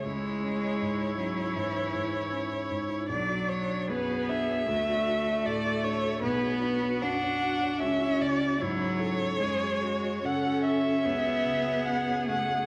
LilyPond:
<<
  \new Staff \with { instrumentName = "Violin" } { \time 4/4 \key b \dorian \tempo 4 = 76 cis''1 | d''8 cis''8 b'8 e''4. d''8 cis''8 | b'4 fis''4 e''8 d''8 cis''4~ | cis''4 fis''8 e''4. fis''8 fis''8 | }
  \new Staff \with { instrumentName = "Viola" } { \time 4/4 \key b \dorian e'1 | d'4 gis'4 fis'4 a'4 | gis'8 fis'2~ fis'8 e'8 a'8 | gis'8 fis'8 a'4 gis'2 | }
  \new Staff \with { instrumentName = "Felt piano" } { \time 4/4 \key b \dorian cis,16 <e' cis''>16 cis'16 <e' cis''>16 gis,16 <e' cis''>16 cis'16 <e' cis''>16 gis,16 <e' cis''>16 gis,16 <e' cis''>16 cis'16 <e' cis''>16 gis,16 <e' cis''>16 | b,,16 <fis' cis''>16 d'16 <fis' cis''>16 fis,16 <fis' cis''>16 d'16 <fis' cis''>16 d,16 <fis' d''>16 d'16 <fis' d''>16 a,16 <fis' d''>16 d'16 fis'16 | b,,16 <fis' cis''>16 d'16 <fis' cis''>16 fis,16 <fis' cis''>16 d'16 <fis' cis''>16 cis,16 <e' cis''>16 cis16 <e' cis''>16 gis,16 <e' cis''>16 cis'16 <e' cis''>16 | fis,16 <fis' cis''>16 cis'16 <fis' cis''>16 cis16 <fis' cis''>16 cis'16 <fis' cis''>16 cis,16 <fis' cis''>16 cis16 <fis' cis''>16 cis'16 <fis' cis''>16 cis16 <fis' cis''>16 | }
  \new Staff \with { instrumentName = "Cello" } { \time 4/4 \key b \dorian gis4. fis8 e4 r4 | fis4 b4 a2 | b4 d'4 cis'4 fis4 | gis4 cis'4 b4. a8 | }
>>